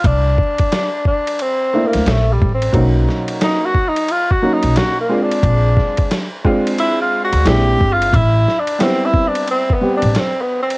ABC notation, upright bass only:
X:1
M:4/4
L:1/16
Q:"Swing 16ths" 1/4=89
K:C
V:1 name="Upright bass" clef=bass
C,,2 z8 z D,, _B,,,2 A,,,2 | B,,,2 z8 z B,,, z4 | _B,,,2 z8 z D,, B,,,2 G,,,2 | A,,,2 z8 z A,,, z4 |]